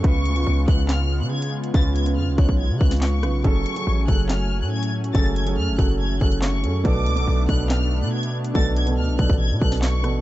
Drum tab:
HH |x---x-x-----x---x---------x---x-|x---x-x-----x---------xxxx--x---|x---x-x-----x---x---------x---x-|x---x-x-----x---------x-----x---|
CP |----------------x---------------|------------------------x-------|----------------x---------------|------------------------x-------|
SD |----------------o---------------|----------------------o-o---r---|----------------o---------------|------------------------o-------|
BD |o-----------o-------------------|o-----------o-o-----o-----------|o-----------o-------------------|o-----------o-------o-----------|

HH |x---x-x-----x---x---------x---x-|x---x-x-----x---------xxxx--x---|
CP |----------------x---------------|------------------------x-------|
SD |----------------o---------------|----------------------o-o---r---|
BD |o-----------o-------------------|o-----------o-o-----o-----------|